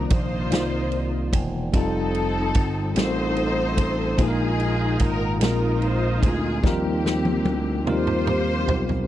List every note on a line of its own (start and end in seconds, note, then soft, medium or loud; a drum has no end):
0.00 0.48 C3 medium
0.00 0.40 D#3 medium
0.00 0.39 A#3 medium
0.00 0.49 D4 medium
0.00 0.11 D#4 medium
0.00 0.40 F4 medium
0.00 0.41 C5 medium
0.00 0.39 D5 medium
0.10 0.48 A#1 loud
0.10 1.29 D#4 medium
0.10 1.30 F4 medium
0.10 1.34 C5 loud
0.10 kick loud
0.10 ride medium
0.50 1.29 C2 medium
0.50 1.61 A#3 medium
0.50 1.62 D#4 medium
0.50 1.63 F4 medium
0.50 1.63 C5 medium
0.50 1.62 D5 medium
0.50 snare loud
0.50 ride medium
0.92 ride soft
1.33 1.70 E1 medium
1.33 kick medium
1.33 ride medium
1.73 2.51 F1 loud
1.73 2.84 G3 medium
1.73 2.84 C4 medium
1.73 2.93 C4 medium
1.73 2.85 D#4 medium
1.73 2.93 D#4 medium
1.73 2.85 F4 medium
1.73 2.93 A4 loud
1.73 2.86 A4 medium
1.73 kick loud
1.73 ride medium
2.15 ride soft
2.55 2.93 G1 loud
2.55 kick loud
2.55 ride medium
2.95 3.74 A1 medium
2.95 4.06 G3 medium
2.95 4.07 C4 medium
2.95 4.07 D#4 medium
2.95 4.16 D#4 medium
2.95 4.08 F4 medium
2.95 4.16 A4 medium
2.95 3.04 A#4 medium
2.95 4.19 C5 loud
2.95 snare loud
2.95 ride medium
3.05 4.11 C5 medium
3.37 ride soft
3.77 4.15 A1 medium
3.77 kick medium
3.77 ride medium
4.17 4.96 A#1 loud
4.17 5.37 A#2 medium
4.17 5.29 G#3 medium
4.17 5.29 A#3 medium
4.17 5.30 D#4 medium
4.17 5.38 D#4 medium
4.17 5.30 F4 medium
4.17 5.38 F4 medium
4.17 5.01 G#4 loud
4.17 4.26 A4 medium
4.17 kick loud
4.17 ride medium
4.27 5.34 A#4 medium
4.60 ride medium
4.99 5.41 G#1 medium
4.99 5.41 A#4 loud
4.99 kick medium
4.99 ride medium
5.40 6.19 A#1 loud
5.40 6.60 A#2 medium
5.40 6.51 G#3 medium
5.40 6.52 C4 medium
5.40 6.52 D#4 medium
5.40 6.60 D#4 medium
5.40 6.60 F4 medium
5.40 6.53 F4 medium
5.40 5.80 A#4 loud
5.40 snare loud
5.40 ride medium
5.44 6.53 A#4 medium
5.82 6.23 C5 loud
5.82 ride soft
6.22 6.60 D2 medium
6.22 6.65 G#4 loud
6.22 kick loud
6.22 ride medium
6.63 7.41 D#2 loud
6.63 7.83 F3 medium
6.63 7.74 G3 medium
6.63 8.24 A#3 medium
6.63 7.75 C4 medium
6.63 8.25 C4 medium
6.63 7.75 D#4 medium
6.63 7.76 F4 medium
6.63 7.87 G4 medium
6.63 7.76 A#4 loud
6.63 kick loud
6.63 snare medium
7.06 snare medium
7.25 high tom medium
7.45 7.83 D2 medium
7.45 high tom loud
7.86 8.64 D#2 medium
7.86 8.97 G3 medium
7.86 8.98 C4 medium
7.86 8.98 D#4 medium
7.86 9.06 F4 medium
7.86 8.99 F4 medium
7.86 9.06 G4 medium
7.86 8.99 A#4 medium
7.86 9.06 C5 loud
7.86 mid tom loud
8.07 mid tom medium
8.27 mid tom loud
8.67 9.05 B1 medium
8.67 floor tom loud
8.89 floor tom medium